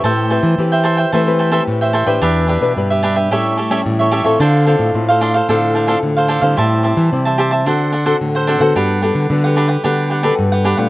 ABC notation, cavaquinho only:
X:1
M:4/4
L:1/16
Q:1/4=110
K:Am
V:1 name="Cavaquinho"
[Aceg]2 [Aceg]3 [ceg] [Aceg] [ceg] [Aceg]2 [Aceg] [Aceg] z [ceg] [Aceg] [ceg] | [DGBe]2 [DGBe]3 [GBe] [DGBe] [GBe] [GA^ce]2 [GAce] [GAce] z [Ace] [GAce] [Ace] | [DAcf]2 [DAcf]3 [Acf] [DAcf] [Acf] [DAcf]2 [DAcf] [DAcf] z [Acf] [DAcf] [Acf] | [Gcea]2 [Gcea]3 [cea] [Gcea] [cea] [DAc^f]2 [DAcf] [DAcf] z [Acf] [DAcf] [Acf] |
[DGB^f]2 [DGBf]3 [GBf] [DGBf] [GBf] [DGBf]2 [DGBf] [DGBf] z [GBf] [DGBf] [GBf] |]